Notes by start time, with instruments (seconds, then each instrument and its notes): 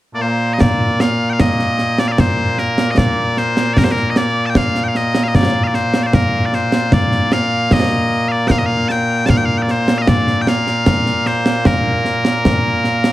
0.15 bagpipes A#2 A#3 D5
0.21 bagpipes C5
0.53 bagpipes D#5
0.60 bagpipes D5, concert bass drum, snare
1.00 bagpipes F5, snare
1.30 bagpipes F5 G5
1.40 bagpipes D#5, concert bass drum, snare
1.60 snare
1.79 snare
1.98 bagpipes D5, snare
2.08 bagpipes D5 F5
2.18 bagpipes C5, concert bass drum, snare
2.58 bagpipes A#4, snare
2.78 snare
2.91 bagpipes D#5
2.98 bagpipes D5, concert bass drum, snare
3.37 bagpipes C5, snare
3.57 snare
3.73 bagpipes D5, concert bass drum, snare
3.78 bagpipes A#4
3.84 bagpipes C5
3.91 bagpipes A#4
3.97 snare
4.10 bagpipes D#5
4.16 bagpipes D5, snare
4.46 bagpipes G5 A5
4.55 bagpipes F5, concert bass drum, snare
4.75 snare
4.84 bagpipes G5
4.88 bagpipes F5
4.95 bagpipes D#5, snare
5.15 snare
5.23 bagpipes F5
5.28 bagpipes D#5
5.35 bagpipes D5, concert bass drum, snare
5.64 bagpipes D5 F5
5.74 bagpipes C5, snare
5.94 snare
6.03 bagpipes C5 D5
6.13 bagpipes A#4, concert bass drum, snare
6.45 bagpipes D5
6.53 bagpipes C5, snare
6.72 snare
6.92 bagpipes D5, concert bass drum, snare
7.12 snare
7.32 bagpipes F5, snare
7.71 bagpipes D#5, concert bass drum, snare
7.91 snare
8.28 bagpipes D5 F5
8.48 bagpipes F5 G5, concert bass drum, snare
8.58 bagpipes D#5
8.66 bagpipes F5
8.89 bagpipes G5 A5, snare
9.26 bagpipes F5 A5, concert bass drum, snare
9.37 bagpipes G5
9.45 bagpipes F5
9.58 bagpipes G5
9.62 bagpipes D5
9.68 bagpipes C5, snare
9.88 snare
9.98 bagpipes D#5 F5
10.07 bagpipes D5, concert bass drum, snare
10.27 snare
10.42 bagpipes G5
10.47 bagpipes F5, snare
10.67 snare
10.86 concert bass drum, snare
11.06 snare
11.26 bagpipes C5, snare
11.46 snare
11.65 bagpipes A#4, concert bass drum, snare
12.05 snare
12.25 snare
12.45 concert bass drum, snare
12.84 snare
13.04 snare